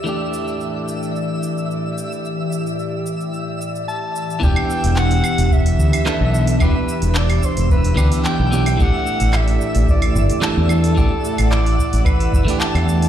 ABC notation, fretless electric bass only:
X:1
M:4/4
L:1/16
Q:"Swing 16ths" 1/4=110
K:Em
V:1 name="Fretless electric bass" clef=bass
z16 | z16 | E,,, z2 E,,,3 z E,,,3 D,, z2 B,,,3 | E,,, z2 E,,,3 z E,,,3 D,, z2 B,,,3 |
A,,, z2 A,,,3 z A,,,3 G,,, z2 E,,3 | A,,, z2 A,,,3 z A,,,3 G,,, z2 E,,3 |]